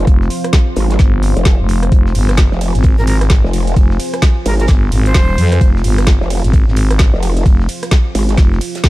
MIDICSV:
0, 0, Header, 1, 7, 480
1, 0, Start_track
1, 0, Key_signature, -4, "minor"
1, 0, Tempo, 461538
1, 76, Time_signature, 4, 2, 24, 8
1, 9246, End_track
2, 0, Start_track
2, 0, Title_t, "Analog synth pad"
2, 0, Program_c, 0, 89
2, 0, Note_on_c, 0, 53, 84
2, 0, Note_on_c, 0, 60, 75
2, 0, Note_on_c, 0, 72, 75
2, 0, Note_on_c, 0, 77, 91
2, 1984, Note_off_c, 0, 77, 0
2, 1996, Note_on_c, 0, 80, 92
2, 9246, Note_off_c, 0, 53, 0
2, 9246, Note_off_c, 0, 60, 0
2, 9246, Note_off_c, 0, 72, 0
2, 9246, Note_off_c, 0, 80, 0
2, 9246, End_track
3, 0, Start_track
3, 0, Title_t, "Flute"
3, 0, Program_c, 1, 73
3, 3101, Note_on_c, 1, 70, 92
3, 3162, Note_off_c, 1, 70, 0
3, 3196, Note_on_c, 1, 70, 76
3, 3289, Note_off_c, 1, 70, 0
3, 4636, Note_on_c, 1, 70, 86
3, 4729, Note_off_c, 1, 70, 0
3, 4782, Note_on_c, 1, 70, 81
3, 4842, Note_off_c, 1, 70, 0
3, 5262, Note_on_c, 1, 72, 98
3, 5924, Note_off_c, 1, 72, 0
3, 9246, End_track
4, 0, Start_track
4, 0, Title_t, "Ambient pad"
4, 0, Program_c, 2, 92
4, 0, Note_on_c, 2, 65, 77
4, 0, Note_on_c, 2, 72, 71
4, 9246, Note_off_c, 2, 65, 0
4, 9246, Note_off_c, 2, 72, 0
4, 9246, End_track
5, 0, Start_track
5, 0, Title_t, "FM bass"
5, 0, Program_c, 3, 39
5, 76, Note_on_c, 3, 29, 100
5, 301, Note_off_c, 3, 29, 0
5, 1036, Note_on_c, 3, 31, 99
5, 1398, Note_off_c, 3, 31, 0
5, 1661, Note_on_c, 3, 29, 96
5, 1981, Note_off_c, 3, 29, 0
5, 1996, Note_on_c, 3, 29, 96
5, 2221, Note_off_c, 3, 29, 0
5, 2235, Note_on_c, 3, 31, 101
5, 2598, Note_off_c, 3, 31, 0
5, 2861, Note_on_c, 3, 32, 97
5, 3078, Note_off_c, 3, 32, 0
5, 3101, Note_on_c, 3, 32, 97
5, 3558, Note_off_c, 3, 32, 0
5, 3916, Note_on_c, 3, 29, 97
5, 4141, Note_off_c, 3, 29, 0
5, 4876, Note_on_c, 3, 31, 100
5, 5101, Note_off_c, 3, 31, 0
5, 5116, Note_on_c, 3, 32, 100
5, 5341, Note_off_c, 3, 32, 0
5, 5356, Note_on_c, 3, 27, 100
5, 5581, Note_off_c, 3, 27, 0
5, 5596, Note_on_c, 3, 41, 97
5, 5821, Note_off_c, 3, 41, 0
5, 5836, Note_on_c, 3, 29, 99
5, 6061, Note_off_c, 3, 29, 0
5, 6076, Note_on_c, 3, 31, 102
5, 6438, Note_off_c, 3, 31, 0
5, 6702, Note_on_c, 3, 32, 100
5, 6918, Note_off_c, 3, 32, 0
5, 6942, Note_on_c, 3, 32, 101
5, 7399, Note_off_c, 3, 32, 0
5, 7756, Note_on_c, 3, 29, 97
5, 7981, Note_off_c, 3, 29, 0
5, 8716, Note_on_c, 3, 29, 102
5, 8941, Note_off_c, 3, 29, 0
5, 9246, End_track
6, 0, Start_track
6, 0, Title_t, "Wobble bass"
6, 0, Program_c, 4, 39
6, 796, Note_on_c, 4, 32, 102
6, 1021, Note_off_c, 4, 32, 0
6, 1421, Note_on_c, 4, 29, 102
6, 1638, Note_off_c, 4, 29, 0
6, 2621, Note_on_c, 4, 29, 95
6, 2838, Note_off_c, 4, 29, 0
6, 3582, Note_on_c, 4, 29, 95
6, 3901, Note_off_c, 4, 29, 0
6, 4636, Note_on_c, 4, 32, 98
6, 4861, Note_off_c, 4, 32, 0
6, 6462, Note_on_c, 4, 29, 97
6, 6678, Note_off_c, 4, 29, 0
6, 7421, Note_on_c, 4, 29, 98
6, 7740, Note_off_c, 4, 29, 0
6, 8476, Note_on_c, 4, 32, 100
6, 8701, Note_off_c, 4, 32, 0
6, 9246, End_track
7, 0, Start_track
7, 0, Title_t, "Drums"
7, 74, Note_on_c, 9, 42, 83
7, 76, Note_off_c, 9, 42, 0
7, 76, Note_on_c, 9, 36, 127
7, 76, Note_on_c, 9, 42, 51
7, 180, Note_off_c, 9, 36, 0
7, 180, Note_off_c, 9, 42, 0
7, 219, Note_on_c, 9, 38, 39
7, 314, Note_on_c, 9, 42, 70
7, 316, Note_on_c, 9, 46, 113
7, 323, Note_off_c, 9, 38, 0
7, 418, Note_off_c, 9, 42, 0
7, 420, Note_off_c, 9, 46, 0
7, 462, Note_on_c, 9, 37, 69
7, 462, Note_on_c, 9, 42, 62
7, 550, Note_on_c, 9, 38, 124
7, 556, Note_off_c, 9, 42, 0
7, 556, Note_on_c, 9, 36, 125
7, 556, Note_on_c, 9, 42, 53
7, 558, Note_off_c, 9, 38, 0
7, 558, Note_off_c, 9, 42, 0
7, 558, Note_on_c, 9, 38, 113
7, 558, Note_on_c, 9, 42, 85
7, 566, Note_off_c, 9, 37, 0
7, 660, Note_off_c, 9, 36, 0
7, 662, Note_off_c, 9, 38, 0
7, 662, Note_off_c, 9, 42, 0
7, 791, Note_on_c, 9, 42, 67
7, 796, Note_on_c, 9, 46, 98
7, 895, Note_off_c, 9, 42, 0
7, 900, Note_off_c, 9, 46, 0
7, 941, Note_on_c, 9, 42, 64
7, 943, Note_on_c, 9, 38, 60
7, 1030, Note_off_c, 9, 38, 0
7, 1030, Note_on_c, 9, 38, 62
7, 1035, Note_off_c, 9, 42, 0
7, 1035, Note_on_c, 9, 42, 52
7, 1036, Note_off_c, 9, 42, 0
7, 1036, Note_on_c, 9, 36, 126
7, 1036, Note_on_c, 9, 42, 92
7, 1134, Note_off_c, 9, 38, 0
7, 1140, Note_off_c, 9, 36, 0
7, 1140, Note_off_c, 9, 42, 0
7, 1275, Note_on_c, 9, 46, 110
7, 1283, Note_on_c, 9, 42, 74
7, 1379, Note_off_c, 9, 46, 0
7, 1387, Note_off_c, 9, 42, 0
7, 1421, Note_on_c, 9, 42, 62
7, 1510, Note_on_c, 9, 38, 118
7, 1514, Note_off_c, 9, 42, 0
7, 1514, Note_on_c, 9, 42, 86
7, 1516, Note_off_c, 9, 42, 0
7, 1516, Note_on_c, 9, 36, 126
7, 1516, Note_on_c, 9, 42, 51
7, 1521, Note_off_c, 9, 38, 0
7, 1521, Note_on_c, 9, 38, 103
7, 1620, Note_off_c, 9, 36, 0
7, 1620, Note_off_c, 9, 42, 0
7, 1625, Note_off_c, 9, 38, 0
7, 1756, Note_on_c, 9, 42, 70
7, 1756, Note_on_c, 9, 46, 93
7, 1860, Note_off_c, 9, 42, 0
7, 1860, Note_off_c, 9, 46, 0
7, 1901, Note_on_c, 9, 37, 64
7, 1901, Note_on_c, 9, 42, 65
7, 1996, Note_off_c, 9, 42, 0
7, 1996, Note_on_c, 9, 36, 121
7, 1996, Note_on_c, 9, 42, 51
7, 2000, Note_off_c, 9, 42, 0
7, 2000, Note_on_c, 9, 42, 86
7, 2005, Note_off_c, 9, 37, 0
7, 2100, Note_off_c, 9, 36, 0
7, 2104, Note_off_c, 9, 42, 0
7, 2141, Note_on_c, 9, 38, 61
7, 2234, Note_on_c, 9, 46, 83
7, 2236, Note_off_c, 9, 46, 0
7, 2236, Note_on_c, 9, 46, 108
7, 2236, Note_on_c, 9, 51, 80
7, 2245, Note_off_c, 9, 38, 0
7, 2340, Note_off_c, 9, 46, 0
7, 2340, Note_off_c, 9, 51, 0
7, 2380, Note_on_c, 9, 38, 42
7, 2381, Note_on_c, 9, 37, 69
7, 2381, Note_on_c, 9, 42, 64
7, 2467, Note_off_c, 9, 42, 0
7, 2467, Note_on_c, 9, 42, 86
7, 2470, Note_off_c, 9, 38, 0
7, 2470, Note_on_c, 9, 38, 120
7, 2475, Note_off_c, 9, 42, 0
7, 2475, Note_on_c, 9, 42, 53
7, 2476, Note_off_c, 9, 38, 0
7, 2476, Note_on_c, 9, 36, 122
7, 2476, Note_on_c, 9, 38, 122
7, 2485, Note_off_c, 9, 37, 0
7, 2579, Note_off_c, 9, 42, 0
7, 2580, Note_off_c, 9, 36, 0
7, 2580, Note_off_c, 9, 38, 0
7, 2617, Note_on_c, 9, 38, 45
7, 2715, Note_on_c, 9, 46, 97
7, 2715, Note_on_c, 9, 51, 80
7, 2719, Note_on_c, 9, 42, 64
7, 2721, Note_off_c, 9, 38, 0
7, 2819, Note_off_c, 9, 46, 0
7, 2819, Note_off_c, 9, 51, 0
7, 2823, Note_off_c, 9, 42, 0
7, 2861, Note_on_c, 9, 42, 65
7, 2948, Note_off_c, 9, 42, 0
7, 2948, Note_on_c, 9, 42, 87
7, 2955, Note_off_c, 9, 42, 0
7, 2955, Note_on_c, 9, 42, 52
7, 2956, Note_on_c, 9, 36, 120
7, 3059, Note_off_c, 9, 42, 0
7, 3060, Note_off_c, 9, 36, 0
7, 3101, Note_on_c, 9, 38, 51
7, 3196, Note_on_c, 9, 46, 104
7, 3196, Note_on_c, 9, 51, 80
7, 3200, Note_on_c, 9, 42, 71
7, 3205, Note_off_c, 9, 38, 0
7, 3300, Note_off_c, 9, 46, 0
7, 3300, Note_off_c, 9, 51, 0
7, 3304, Note_off_c, 9, 42, 0
7, 3341, Note_on_c, 9, 37, 87
7, 3341, Note_on_c, 9, 42, 66
7, 3430, Note_on_c, 9, 38, 114
7, 3431, Note_off_c, 9, 38, 0
7, 3431, Note_on_c, 9, 38, 111
7, 3436, Note_off_c, 9, 42, 0
7, 3436, Note_on_c, 9, 36, 123
7, 3436, Note_on_c, 9, 42, 51
7, 3437, Note_off_c, 9, 42, 0
7, 3437, Note_on_c, 9, 42, 82
7, 3445, Note_off_c, 9, 37, 0
7, 3535, Note_off_c, 9, 38, 0
7, 3540, Note_off_c, 9, 36, 0
7, 3541, Note_off_c, 9, 42, 0
7, 3587, Note_on_c, 9, 38, 45
7, 3676, Note_on_c, 9, 42, 70
7, 3676, Note_on_c, 9, 46, 97
7, 3676, Note_on_c, 9, 51, 78
7, 3691, Note_off_c, 9, 38, 0
7, 3780, Note_off_c, 9, 42, 0
7, 3780, Note_off_c, 9, 46, 0
7, 3780, Note_off_c, 9, 51, 0
7, 3821, Note_on_c, 9, 42, 67
7, 3916, Note_off_c, 9, 42, 0
7, 3916, Note_on_c, 9, 36, 119
7, 3916, Note_on_c, 9, 42, 81
7, 4020, Note_off_c, 9, 36, 0
7, 4020, Note_off_c, 9, 42, 0
7, 4060, Note_on_c, 9, 38, 43
7, 4156, Note_on_c, 9, 46, 104
7, 4156, Note_on_c, 9, 51, 82
7, 4161, Note_on_c, 9, 42, 69
7, 4164, Note_off_c, 9, 38, 0
7, 4260, Note_off_c, 9, 46, 0
7, 4260, Note_off_c, 9, 51, 0
7, 4265, Note_off_c, 9, 42, 0
7, 4301, Note_on_c, 9, 37, 70
7, 4301, Note_on_c, 9, 42, 67
7, 4390, Note_on_c, 9, 38, 117
7, 4396, Note_off_c, 9, 38, 0
7, 4396, Note_off_c, 9, 42, 0
7, 4396, Note_on_c, 9, 36, 120
7, 4396, Note_on_c, 9, 38, 111
7, 4396, Note_on_c, 9, 42, 56
7, 4397, Note_off_c, 9, 42, 0
7, 4397, Note_on_c, 9, 42, 84
7, 4405, Note_off_c, 9, 37, 0
7, 4500, Note_off_c, 9, 36, 0
7, 4500, Note_off_c, 9, 38, 0
7, 4501, Note_off_c, 9, 42, 0
7, 4635, Note_on_c, 9, 46, 94
7, 4635, Note_on_c, 9, 51, 83
7, 4638, Note_on_c, 9, 42, 68
7, 4739, Note_off_c, 9, 46, 0
7, 4739, Note_off_c, 9, 51, 0
7, 4742, Note_off_c, 9, 42, 0
7, 4781, Note_on_c, 9, 42, 66
7, 4782, Note_on_c, 9, 38, 55
7, 4864, Note_off_c, 9, 42, 0
7, 4864, Note_on_c, 9, 42, 97
7, 4870, Note_off_c, 9, 38, 0
7, 4870, Note_on_c, 9, 38, 60
7, 4876, Note_off_c, 9, 42, 0
7, 4876, Note_on_c, 9, 36, 113
7, 4876, Note_on_c, 9, 42, 55
7, 4974, Note_off_c, 9, 38, 0
7, 4980, Note_off_c, 9, 36, 0
7, 4980, Note_off_c, 9, 42, 0
7, 5115, Note_on_c, 9, 46, 105
7, 5115, Note_on_c, 9, 51, 83
7, 5119, Note_on_c, 9, 42, 64
7, 5219, Note_off_c, 9, 46, 0
7, 5219, Note_off_c, 9, 51, 0
7, 5223, Note_off_c, 9, 42, 0
7, 5261, Note_on_c, 9, 42, 66
7, 5350, Note_on_c, 9, 38, 122
7, 5355, Note_off_c, 9, 42, 0
7, 5355, Note_on_c, 9, 42, 92
7, 5356, Note_off_c, 9, 42, 0
7, 5356, Note_on_c, 9, 36, 118
7, 5356, Note_on_c, 9, 42, 54
7, 5454, Note_off_c, 9, 38, 0
7, 5460, Note_off_c, 9, 36, 0
7, 5460, Note_off_c, 9, 42, 0
7, 5596, Note_on_c, 9, 46, 88
7, 5596, Note_on_c, 9, 51, 81
7, 5600, Note_on_c, 9, 42, 67
7, 5700, Note_off_c, 9, 46, 0
7, 5700, Note_off_c, 9, 51, 0
7, 5704, Note_off_c, 9, 42, 0
7, 5741, Note_on_c, 9, 37, 65
7, 5741, Note_on_c, 9, 42, 67
7, 5835, Note_off_c, 9, 42, 0
7, 5835, Note_on_c, 9, 42, 94
7, 5836, Note_off_c, 9, 42, 0
7, 5836, Note_on_c, 9, 36, 118
7, 5836, Note_on_c, 9, 42, 55
7, 5845, Note_off_c, 9, 37, 0
7, 5940, Note_off_c, 9, 36, 0
7, 5940, Note_off_c, 9, 42, 0
7, 5988, Note_on_c, 9, 38, 63
7, 6075, Note_on_c, 9, 46, 99
7, 6075, Note_on_c, 9, 51, 84
7, 6086, Note_off_c, 9, 46, 0
7, 6086, Note_on_c, 9, 46, 88
7, 6092, Note_off_c, 9, 38, 0
7, 6179, Note_off_c, 9, 51, 0
7, 6190, Note_off_c, 9, 46, 0
7, 6222, Note_on_c, 9, 37, 71
7, 6222, Note_on_c, 9, 42, 70
7, 6227, Note_on_c, 9, 38, 42
7, 6310, Note_off_c, 9, 38, 0
7, 6310, Note_on_c, 9, 38, 121
7, 6316, Note_off_c, 9, 42, 0
7, 6316, Note_on_c, 9, 36, 120
7, 6316, Note_on_c, 9, 42, 56
7, 6323, Note_off_c, 9, 38, 0
7, 6323, Note_on_c, 9, 38, 124
7, 6326, Note_off_c, 9, 37, 0
7, 6420, Note_off_c, 9, 36, 0
7, 6420, Note_off_c, 9, 42, 0
7, 6427, Note_off_c, 9, 38, 0
7, 6461, Note_on_c, 9, 38, 49
7, 6555, Note_on_c, 9, 42, 77
7, 6556, Note_on_c, 9, 46, 90
7, 6556, Note_on_c, 9, 51, 82
7, 6565, Note_off_c, 9, 38, 0
7, 6659, Note_off_c, 9, 42, 0
7, 6660, Note_off_c, 9, 46, 0
7, 6660, Note_off_c, 9, 51, 0
7, 6701, Note_on_c, 9, 42, 68
7, 6796, Note_off_c, 9, 42, 0
7, 6796, Note_on_c, 9, 36, 115
7, 6796, Note_on_c, 9, 42, 55
7, 6797, Note_off_c, 9, 42, 0
7, 6797, Note_on_c, 9, 42, 93
7, 6900, Note_off_c, 9, 36, 0
7, 6901, Note_off_c, 9, 42, 0
7, 6948, Note_on_c, 9, 38, 52
7, 7036, Note_on_c, 9, 46, 102
7, 7036, Note_on_c, 9, 51, 86
7, 7039, Note_on_c, 9, 42, 69
7, 7052, Note_off_c, 9, 38, 0
7, 7140, Note_off_c, 9, 46, 0
7, 7140, Note_off_c, 9, 51, 0
7, 7143, Note_off_c, 9, 42, 0
7, 7181, Note_on_c, 9, 37, 84
7, 7181, Note_on_c, 9, 42, 70
7, 7270, Note_on_c, 9, 38, 121
7, 7274, Note_off_c, 9, 42, 0
7, 7274, Note_on_c, 9, 42, 81
7, 7276, Note_off_c, 9, 42, 0
7, 7276, Note_on_c, 9, 36, 116
7, 7276, Note_on_c, 9, 42, 56
7, 7281, Note_off_c, 9, 38, 0
7, 7281, Note_on_c, 9, 38, 119
7, 7285, Note_off_c, 9, 37, 0
7, 7380, Note_off_c, 9, 36, 0
7, 7380, Note_off_c, 9, 42, 0
7, 7385, Note_off_c, 9, 38, 0
7, 7421, Note_on_c, 9, 38, 43
7, 7512, Note_on_c, 9, 42, 75
7, 7516, Note_on_c, 9, 46, 91
7, 7516, Note_on_c, 9, 51, 85
7, 7525, Note_off_c, 9, 38, 0
7, 7616, Note_off_c, 9, 42, 0
7, 7620, Note_off_c, 9, 46, 0
7, 7620, Note_off_c, 9, 51, 0
7, 7661, Note_on_c, 9, 42, 69
7, 7756, Note_off_c, 9, 42, 0
7, 7756, Note_on_c, 9, 36, 121
7, 7756, Note_on_c, 9, 42, 56
7, 7760, Note_off_c, 9, 42, 0
7, 7760, Note_on_c, 9, 42, 91
7, 7860, Note_off_c, 9, 36, 0
7, 7864, Note_off_c, 9, 42, 0
7, 7902, Note_on_c, 9, 38, 41
7, 7996, Note_on_c, 9, 46, 105
7, 7996, Note_on_c, 9, 51, 83
7, 7998, Note_on_c, 9, 42, 75
7, 8006, Note_off_c, 9, 38, 0
7, 8100, Note_off_c, 9, 46, 0
7, 8100, Note_off_c, 9, 51, 0
7, 8102, Note_off_c, 9, 42, 0
7, 8141, Note_on_c, 9, 37, 66
7, 8141, Note_on_c, 9, 42, 72
7, 8230, Note_on_c, 9, 38, 127
7, 8236, Note_off_c, 9, 42, 0
7, 8236, Note_on_c, 9, 36, 115
7, 8236, Note_on_c, 9, 42, 58
7, 8237, Note_off_c, 9, 42, 0
7, 8237, Note_on_c, 9, 42, 88
7, 8245, Note_off_c, 9, 37, 0
7, 8245, Note_off_c, 9, 38, 0
7, 8245, Note_on_c, 9, 38, 112
7, 8340, Note_off_c, 9, 36, 0
7, 8341, Note_off_c, 9, 42, 0
7, 8349, Note_off_c, 9, 38, 0
7, 8476, Note_on_c, 9, 46, 91
7, 8476, Note_on_c, 9, 51, 83
7, 8482, Note_on_c, 9, 42, 68
7, 8580, Note_off_c, 9, 46, 0
7, 8580, Note_off_c, 9, 51, 0
7, 8586, Note_off_c, 9, 42, 0
7, 8619, Note_on_c, 9, 38, 55
7, 8621, Note_on_c, 9, 42, 69
7, 8710, Note_off_c, 9, 38, 0
7, 8710, Note_on_c, 9, 38, 66
7, 8711, Note_off_c, 9, 38, 0
7, 8711, Note_on_c, 9, 38, 105
7, 8712, Note_off_c, 9, 42, 0
7, 8712, Note_on_c, 9, 42, 72
7, 8716, Note_off_c, 9, 42, 0
7, 8716, Note_on_c, 9, 36, 116
7, 8716, Note_on_c, 9, 42, 57
7, 8815, Note_off_c, 9, 38, 0
7, 8820, Note_off_c, 9, 36, 0
7, 8820, Note_off_c, 9, 42, 0
7, 8862, Note_on_c, 9, 38, 43
7, 8955, Note_on_c, 9, 42, 64
7, 8956, Note_on_c, 9, 46, 103
7, 8956, Note_on_c, 9, 51, 82
7, 8966, Note_off_c, 9, 38, 0
7, 9059, Note_off_c, 9, 42, 0
7, 9060, Note_off_c, 9, 46, 0
7, 9060, Note_off_c, 9, 51, 0
7, 9100, Note_on_c, 9, 42, 81
7, 9101, Note_off_c, 9, 42, 0
7, 9101, Note_on_c, 9, 42, 70
7, 9105, Note_on_c, 9, 38, 100
7, 9190, Note_off_c, 9, 38, 0
7, 9190, Note_on_c, 9, 38, 124
7, 9196, Note_off_c, 9, 42, 0
7, 9196, Note_on_c, 9, 36, 117
7, 9196, Note_on_c, 9, 42, 58
7, 9246, Note_off_c, 9, 36, 0
7, 9246, Note_off_c, 9, 38, 0
7, 9246, Note_off_c, 9, 42, 0
7, 9246, End_track
0, 0, End_of_file